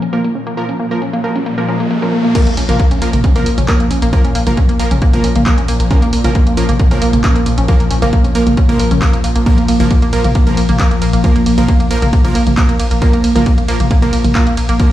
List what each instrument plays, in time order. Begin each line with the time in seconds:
Already playing: synth drone A#2 F3, riser
0.02 synth arpeggio sound C#4, closed hi-hat
0.13 supersaw synth F3 A#3 A#4, synth arpeggio sound A#3, closed hi-hat
0.24 synth arpeggio sound A#3, closed hi-hat
0.35 synth arpeggio sound C#4
0.47 synth arpeggio sound A#3, closed hi-hat
0.57 supersaw synth F3 A#3 A#4, synth arpeggio sound A#3, closed hi-hat
0.69 synth arpeggio sound C#4, closed hi-hat
0.80 synth arpeggio sound A#3
0.91 supersaw synth F3 A#3 A#4, synth arpeggio sound A#3, closed hi-hat
1.02 synth arpeggio sound C#4, closed hi-hat
1.13 synth arpeggio sound A#3, closed hi-hat
1.24 supersaw synth F3 A#3 A#4, synth arpeggio sound A#3
1.36 synth arpeggio sound C#4, closed hi-hat
1.46 synth arpeggio sound A#3, closed hi-hat
1.58 supersaw synth F3 A#3 A#4, synth arpeggio sound A#3, closed hi-hat
1.68 supersaw synth F3 A#3 A#4, synth arpeggio sound C#4
1.80 synth arpeggio sound A#3, closed hi-hat
1.91 synth arpeggio sound A#3, closed hi-hat
2.02 supersaw synth F3 A#3 A#4, synth arpeggio sound C#4, closed hi-hat
2.13 synth arpeggio sound A#3
2.24 synth arpeggio sound A#3, closed hi-hat
2.35 synth drone A#2 F3, supersaw synth F3 A#3 A#4, synth arpeggio sound A#3, kick, closed hi-hat, crash
2.47 synth arpeggio sound A#3, closed hi-hat
2.57 sub bass A#1, synth arpeggio sound C#4, open hi-hat
2.69 sub bass A#1, supersaw synth F3 A#3 A#4, synth arpeggio sound A#3, closed hi-hat, mid tom
2.80 synth arpeggio sound A#3, kick, closed hi-hat
2.91 synth arpeggio sound C#4, closed hi-hat
3.02 sub bass A#1, supersaw synth F3 A#3 A#4, synth arpeggio sound A#3, open hi-hat
3.13 sub bass A#1, synth arpeggio sound A#3, closed hi-hat, mid tom
3.24 synth arpeggio sound C#4, kick, closed hi-hat
3.36 supersaw synth F3 A#3 A#4, synth arpeggio sound A#3, closed hi-hat, mid tom
3.46 sub bass A#1, synth arpeggio sound A#3, open hi-hat
3.58 sub bass A#1, synth arpeggio sound C#4, closed hi-hat, mid tom
3.68 supersaw synth F3 A#3 A#4, synth arpeggio sound A#3, kick, clap, closed hi-hat
3.80 synth arpeggio sound A#3, closed hi-hat
3.91 sub bass A#1, synth arpeggio sound C#4, open hi-hat
4.02 sub bass A#1, synth arpeggio sound A#3, closed hi-hat
4.13 supersaw synth F3 A#3 A#4, synth arpeggio sound A#3, kick, closed hi-hat
4.24 synth arpeggio sound C#4, closed hi-hat
4.35 sub bass A#1, synth arpeggio sound A#3, open hi-hat
4.47 sub bass A#1, supersaw synth F3 A#3 A#4, synth arpeggio sound A#3, closed hi-hat, mid tom
4.57 synth arpeggio sound C#4, kick, closed hi-hat
4.69 synth arpeggio sound A#3, closed hi-hat
4.79 sub bass A#1, supersaw synth F3 A#3 A#4, synth arpeggio sound A#3, open hi-hat
4.91 sub bass A#1, synth arpeggio sound C#4, closed hi-hat, mid tom
5.02 synth arpeggio sound A#3, kick, closed hi-hat
5.13 supersaw synth F3 A#3 A#4, synth arpeggio sound A#3, closed hi-hat, mid tom
5.24 sub bass A#1, synth arpeggio sound C#4, open hi-hat
5.36 sub bass A#1, synth arpeggio sound A#3, closed hi-hat, mid tom
5.46 supersaw synth F3 A#3 A#4, synth arpeggio sound A#3, kick, clap, closed hi-hat
5.58 synth arpeggio sound C#4, closed hi-hat
5.68 sub bass A#1, synth arpeggio sound A#3, open hi-hat
5.80 sub bass A#1, synth arpeggio sound A#3, closed hi-hat
5.91 supersaw synth F3 A#3 A#4, synth arpeggio sound C#4, kick, closed hi-hat
6.02 synth arpeggio sound A#3, closed hi-hat
6.13 sub bass A#1, synth arpeggio sound A#3, open hi-hat
6.24 sub bass A#1, supersaw synth F3 A#3 A#4, synth arpeggio sound C#4, closed hi-hat, mid tom
6.35 synth arpeggio sound A#3, kick, closed hi-hat
6.47 synth arpeggio sound A#3, closed hi-hat
6.57 sub bass A#1, supersaw synth F3 A#3 A#4, synth arpeggio sound C#4, open hi-hat
6.69 sub bass A#1, synth arpeggio sound A#3, closed hi-hat, mid tom
6.79 synth arpeggio sound A#3, kick, closed hi-hat
6.91 supersaw synth F3 A#3 A#4, synth arpeggio sound C#4, closed hi-hat, mid tom
7.02 sub bass A#1, synth arpeggio sound A#3, open hi-hat
7.13 sub bass A#1, synth arpeggio sound A#3, closed hi-hat, mid tom
7.24 supersaw synth F3 A#3 A#4, synth arpeggio sound C#4, kick, clap, closed hi-hat
7.36 synth arpeggio sound A#3, closed hi-hat
7.46 sub bass A#1, synth arpeggio sound A#3, open hi-hat
7.58 sub bass A#1, synth arpeggio sound C#4, closed hi-hat
7.68 supersaw synth F3 A#3 A#4, synth arpeggio sound A#3, kick, closed hi-hat
7.80 synth arpeggio sound A#3, closed hi-hat
7.91 sub bass A#1, synth arpeggio sound C#4, open hi-hat
8.02 sub bass A#1, supersaw synth F3 A#3 A#4, synth arpeggio sound A#3, closed hi-hat, mid tom
8.13 synth arpeggio sound A#3, kick, closed hi-hat
8.24 synth arpeggio sound C#4, closed hi-hat
8.35 sub bass A#1, supersaw synth F3 A#3 A#4, synth arpeggio sound A#3, open hi-hat
8.47 sub bass A#1, synth arpeggio sound A#3, closed hi-hat, mid tom
8.57 synth arpeggio sound C#4, kick, closed hi-hat
8.69 supersaw synth F3 A#3 A#4, synth arpeggio sound A#3, closed hi-hat, mid tom
8.79 sub bass A#1, synth arpeggio sound A#4, open hi-hat
8.91 sub bass A#1, synth arpeggio sound C#4, closed hi-hat, mid tom
9.02 supersaw synth F3 A#3 A#4, synth arpeggio sound A#3, kick, clap, closed hi-hat
9.13 synth arpeggio sound A#3, closed hi-hat
9.24 sub bass A#1, synth arpeggio sound A#3, open hi-hat
9.36 sub bass A#1, synth arpeggio sound A#3, closed hi-hat
9.46 supersaw synth F3 A#3 A#4, synth arpeggio sound A#3, kick, closed hi-hat, ride
9.58 synth arpeggio sound A#3, closed hi-hat
9.68 sub bass A#1, synth arpeggio sound A#3, open hi-hat, ride
9.80 sub bass A#1, supersaw synth F3 A#3 A#4, synth arpeggio sound A#3, closed hi-hat, mid tom
9.91 synth arpeggio sound A#3, kick, closed hi-hat, ride
10.02 synth arpeggio sound A#3, closed hi-hat
10.13 sub bass A#1, supersaw synth F3 A#3 A#4, synth arpeggio sound A#3, open hi-hat, ride
10.24 sub bass A#1, synth arpeggio sound A#3, closed hi-hat, mid tom
10.35 synth arpeggio sound A#3, kick, closed hi-hat, ride
10.47 supersaw synth F3 A#3 A#4, synth arpeggio sound A#3, closed hi-hat, mid tom
10.57 sub bass A#1, synth arpeggio sound A#3, open hi-hat, ride
10.69 sub bass A#1, synth arpeggio sound A#3, closed hi-hat, mid tom
10.79 supersaw synth F3 A#3 A#4, synth arpeggio sound A#3, kick, clap, closed hi-hat, ride
10.91 synth arpeggio sound A#3, closed hi-hat
11.02 sub bass A#1, synth arpeggio sound A#3, open hi-hat, ride
11.13 sub bass A#1, synth arpeggio sound A#3, closed hi-hat
11.24 supersaw synth F3 A#3 A#4, synth arpeggio sound A#3, kick, closed hi-hat, ride
11.36 synth arpeggio sound A#3, closed hi-hat
11.46 sub bass A#1, synth arpeggio sound A#3, open hi-hat, ride
11.58 sub bass A#1, supersaw synth F3 A#3 A#4, synth arpeggio sound A#3, closed hi-hat, mid tom
11.68 synth arpeggio sound A#3, kick, closed hi-hat, ride
11.80 synth arpeggio sound A#3, closed hi-hat
11.91 sub bass A#1, supersaw synth F3 A#3 A#4, synth arpeggio sound A#3, open hi-hat, ride
12.02 sub bass A#1, synth arpeggio sound A#3, closed hi-hat, mid tom
12.13 synth arpeggio sound A#3, kick, closed hi-hat, ride
12.24 supersaw synth F3 A#3 A#4, synth arpeggio sound A#3, closed hi-hat, mid tom
12.35 sub bass A#1, synth arpeggio sound A#3, open hi-hat, ride
12.47 sub bass A#1, synth arpeggio sound A#3, closed hi-hat, mid tom
12.57 supersaw synth F3 A#3 A#4, synth arpeggio sound A#3, kick, clap, closed hi-hat, ride
12.69 synth arpeggio sound A#3, closed hi-hat
12.80 sub bass A#1, synth arpeggio sound A#3, open hi-hat, ride
12.91 sub bass A#1, synth arpeggio sound A#3, closed hi-hat
13.02 supersaw synth F3 A#3 A#4, synth arpeggio sound A#3, kick, closed hi-hat, ride
13.13 synth arpeggio sound A#3, closed hi-hat
13.24 sub bass A#1, synth arpeggio sound A#3, open hi-hat, ride
13.36 sub bass A#1, supersaw synth F3 A#3 A#4, synth arpeggio sound A#3, closed hi-hat, mid tom
13.46 synth arpeggio sound A#3, kick, closed hi-hat, ride
13.58 synth arpeggio sound A#3, closed hi-hat
13.68 sub bass A#1, supersaw synth F3 A#3 A#4, synth arpeggio sound A#3, open hi-hat, ride
13.80 sub bass A#1, synth arpeggio sound A#3, closed hi-hat, mid tom
13.91 synth arpeggio sound A#3, kick, closed hi-hat, ride
14.02 supersaw synth F3 A#3 A#4, synth arpeggio sound A#3, closed hi-hat, mid tom
14.13 sub bass A#1, synth arpeggio sound A#3, open hi-hat, ride
14.24 sub bass A#1, synth arpeggio sound A#3, closed hi-hat, mid tom
14.35 supersaw synth F3 A#3 A#4, synth arpeggio sound A#3, kick, clap, closed hi-hat, ride
14.47 synth arpeggio sound A#3, closed hi-hat
14.57 sub bass A#1, synth arpeggio sound A#3, open hi-hat, ride
14.69 sub bass A#1, synth arpeggio sound A#3, closed hi-hat
14.80 supersaw synth F3 A#3 A#4, synth arpeggio sound A#3, kick, closed hi-hat, ride